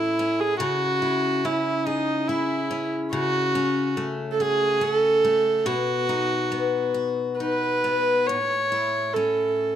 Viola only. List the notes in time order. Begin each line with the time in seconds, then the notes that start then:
Already playing: E4
0.40 G#4
0.60 F#4
1.46 E4
1.87 D#4
2.28 E4
3.13 F#4
4.32 A4
4.41 G#4
4.83 A4
5.66 F#4
7.40 B4
8.27 C#5
9.14 A4